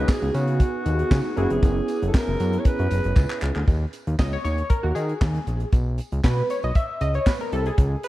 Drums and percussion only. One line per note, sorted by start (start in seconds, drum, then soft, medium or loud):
0.09 kick loud
0.09 snare loud
0.09 clap medium
0.09 tambourine loud
0.23 closed hi-hat soft
0.35 closed hi-hat medium
0.35 tambourine medium
0.48 closed hi-hat medium
0.60 kick loud
0.60 closed hi-hat loud
0.60 tambourine soft
0.86 closed hi-hat medium
0.86 tambourine medium
0.99 closed hi-hat soft
1.11 kick loud
1.11 snare loud
1.11 clap medium
1.11 tambourine medium
1.37 closed hi-hat medium
1.50 closed hi-hat medium
1.63 kick loud
1.63 closed hi-hat medium
1.63 tambourine soft
1.88 closed hi-hat medium
1.88 tambourine medium
2.02 closed hi-hat medium
2.14 kick loud
2.14 snare loud
2.14 clap loud
2.14 tambourine loud
2.40 closed hi-hat medium
2.40 tambourine medium
2.53 closed hi-hat medium
2.65 kick loud
2.65 closed hi-hat medium
2.65 tambourine soft
2.79 closed hi-hat soft
2.90 closed hi-hat medium
2.90 tambourine medium
3.04 closed hi-hat soft
3.16 kick loud
3.16 clap medium
3.16 tambourine loud
3.30 clap medium
3.42 clap medium
3.42 tambourine soft
3.56 clap loud
3.67 kick loud
3.67 closed hi-hat medium
3.67 tambourine soft
3.93 closed hi-hat medium
3.93 tambourine medium
4.07 closed hi-hat medium
4.19 kick loud
4.19 snare loud
4.19 clap medium
4.19 tambourine loud
4.45 closed hi-hat medium
4.45 tambourine soft
4.58 closed hi-hat soft
4.70 kick loud
4.70 closed hi-hat loud
4.96 closed hi-hat medium
4.96 tambourine medium
5.09 closed hi-hat soft
5.21 kick loud
5.21 snare loud
5.21 clap medium
5.21 tambourine medium
5.35 closed hi-hat soft
5.47 closed hi-hat medium
5.47 tambourine soft
5.60 closed hi-hat medium
5.73 kick loud
5.73 closed hi-hat medium
5.73 tambourine soft
5.98 closed hi-hat medium
5.98 tambourine medium
6.12 closed hi-hat soft
6.24 kick loud
6.24 snare loud
6.24 clap medium
6.24 tambourine loud
6.50 closed hi-hat medium
6.50 tambourine medium
6.63 closed hi-hat soft
6.75 kick loud
6.75 closed hi-hat medium
6.75 tambourine soft
7.01 closed hi-hat medium
7.01 tambourine medium
7.14 closed hi-hat soft
7.26 kick loud
7.26 snare loud
7.26 clap medium
7.26 tambourine medium
7.40 closed hi-hat soft
7.52 closed hi-hat medium
7.66 closed hi-hat medium
7.78 kick loud
7.78 closed hi-hat loud
7.78 tambourine soft
8.03 closed hi-hat medium
8.03 tambourine medium